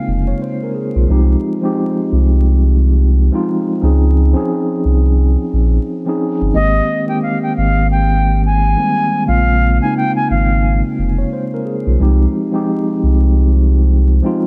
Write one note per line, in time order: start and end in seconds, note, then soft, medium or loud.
0.00 1.11 C#3 medium
0.00 1.09 G#3 medium
0.00 1.11 A#3 medium
0.00 1.10 C4 medium
0.00 1.11 D#4 medium
0.00 0.96 F4 medium
0.08 0.33 F1 loud
0.27 0.41 C#5 medium
0.42 0.61 C5 medium
0.63 0.76 A#4 medium
0.75 0.94 G#4 medium
0.96 1.06 B1 loud
0.96 1.28 F4 medium
1.08 1.36 C2 loud
1.08 1.46 F3 medium
1.08 1.46 G#3 medium
1.08 1.46 C4 medium
1.08 1.47 D#4 medium
1.08 1.47 G4 loud
1.61 2.58 F3 medium
1.61 2.59 G#3 medium
1.61 2.59 C4 medium
1.61 2.59 D#4 medium
1.61 2.60 G4 medium
2.12 3.30 C2 loud
3.32 3.69 F3 medium
3.32 3.69 G#3 medium
3.32 3.70 C4 medium
3.32 3.70 D#4 medium
3.32 3.70 F4 loud
3.81 4.34 C#2 loud
3.81 4.18 F3 medium
3.81 4.19 C4 medium
3.81 4.19 C#4 medium
3.81 4.20 D#4 medium
3.81 4.20 G#4 medium
4.33 5.30 F3 medium
4.33 5.31 C4 medium
4.33 5.31 C#4 medium
4.33 5.32 D#4 medium
4.33 5.32 G#4 loud
4.85 5.37 C2 medium
5.53 5.79 A#1 loud
6.05 6.42 F3 medium
6.05 6.42 C4 medium
6.05 6.43 C#4 medium
6.05 6.43 D#4 medium
6.05 6.44 G#4 loud
6.42 6.52 G1 medium
6.53 6.81 G#1 loud
6.53 6.90 D#3 medium
6.53 6.91 G#3 medium
6.53 6.91 A#3 medium
6.53 6.92 C4 medium
6.53 6.92 G4 medium
6.53 7.06 D#5 loud
7.06 8.03 D#3 medium
7.06 8.04 G#3 medium
7.06 8.04 A#3 medium
7.06 8.04 C4 medium
7.06 8.05 G4 medium
7.06 7.21 G5 medium
7.23 7.41 F5 medium
7.43 7.55 G5 medium
7.57 8.76 G#1 medium
7.57 7.87 F5 medium
7.91 8.42 G5 medium
8.46 9.24 G#5 medium
8.77 9.14 D#3 medium
8.77 9.16 G3 medium
8.77 9.14 G#3 medium
8.77 9.15 A#3 medium
8.77 9.15 C4 medium
9.25 9.80 A#1 loud
9.25 9.63 C#3 medium
9.25 9.63 G#3 medium
9.25 9.64 A#3 medium
9.25 9.64 C4 medium
9.25 9.65 F4 medium
9.25 9.78 F5 loud
9.80 10.77 C#3 medium
9.80 10.77 G#3 medium
9.80 10.78 A#3 medium
9.80 10.78 C4 medium
9.80 10.78 D#4 medium
9.80 9.94 G#5 medium
9.97 10.14 G5 medium
10.16 10.29 G#5 medium
10.31 10.82 G#1 medium
10.31 10.81 F5 medium
10.99 11.24 F1 loud
11.18 11.31 C#5 medium
11.33 11.52 C5 medium
11.54 11.66 A#4 medium
11.65 11.85 G#4 medium
11.87 11.97 B1 medium
11.87 12.19 F4 medium
11.99 12.27 C2 loud
11.99 12.36 F3 medium
11.99 12.37 G#3 medium
11.99 12.37 C4 medium
11.99 12.38 D#4 medium
11.99 12.38 G4 loud
12.52 13.49 F3 medium
12.52 13.49 G#3 medium
12.52 13.50 C4 medium
12.52 13.50 D#4 medium
12.52 13.51 G4 loud
13.03 14.21 C2 loud
14.22 14.47 F3 medium
14.22 14.47 G#3 medium
14.22 14.47 C4 medium
14.22 14.47 D#4 medium
14.22 14.47 F4 loud